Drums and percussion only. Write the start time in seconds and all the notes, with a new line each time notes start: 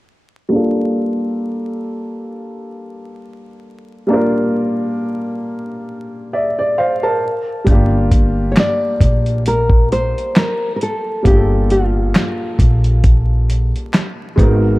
7.67 kick, closed hi-hat
8.11 kick, closed hi-hat
8.56 snare, clap, closed hi-hat
9.01 kick, closed hi-hat
9.26 closed hi-hat
9.46 closed hi-hat
9.70 kick
9.92 closed hi-hat
10.18 closed hi-hat
10.36 snare, clap, closed hi-hat
10.81 closed hi-hat
11.25 kick, closed hi-hat
11.70 closed hi-hat
12.15 snare, clap, closed hi-hat
12.59 kick, closed hi-hat
12.84 closed hi-hat
13.04 kick, closed hi-hat
13.50 closed hi-hat
13.76 closed hi-hat
13.93 snare, clap, closed hi-hat
14.38 kick, closed hi-hat